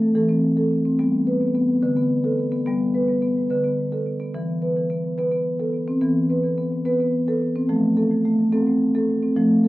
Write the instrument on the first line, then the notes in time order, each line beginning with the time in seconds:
marimba
Already playing: A3
0.15 E3 A4
0.29 C4
0.57 A4
0.85 C4
0.99 G3 B3
1.27 B4
1.55 B3
1.83 D3 B4
1.97 B3
2.24 A4
2.52 B3
2.66 G3 B3
2.95 B4
3.22 B3
3.50 D3 B4
3.64 B3
3.92 A4
4.20 B3
4.34 E3 B3
4.62 B4
4.90 B3
5.18 B3 B4
5.32 B3
5.59 A4
5.88 C4
6.01 E3 B3
6.30 B4
6.58 B3
6.85 B3 B4
7.00 B3
7.28 A4
7.56 C4
7.69 F3 A3
7.97 A4
8.25 A3
8.53 C4 A4
8.67 C4
8.95 A4
9.23 C4
9.36 F3 A3
9.64 A4